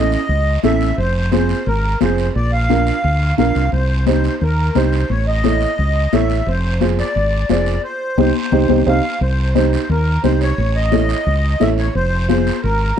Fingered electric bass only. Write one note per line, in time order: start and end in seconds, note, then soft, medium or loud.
0.00 0.15 A1 medium
0.29 0.56 C#2 medium
0.63 0.91 A1 medium
0.98 1.53 F1 medium
1.67 1.94 G#1 medium
2.01 2.29 F1 medium
2.36 2.90 A#1 medium
3.04 3.32 D2 medium
3.39 3.54 A#1 medium
3.55 3.71 C2 medium
3.73 4.27 C2 medium
4.41 4.69 D#2 medium
4.75 5.03 C2 medium
5.10 5.65 A1 medium
5.79 6.06 C#2 medium
6.13 6.40 A1 medium
6.47 7.02 F1 loud
7.16 7.43 G#1 medium
7.49 7.77 F1 medium
8.18 8.31 C2 medium
8.52 8.65 C2 medium
8.69 8.82 C2 medium
8.87 8.99 C2 medium
9.21 9.76 C2 medium
9.89 10.17 D#2 medium
10.24 10.51 C2 medium
10.58 11.13 A1 loud
11.26 11.54 C#2 medium
11.61 11.88 A1 medium
11.95 12.50 F1 loud
12.64 12.91 G#1 medium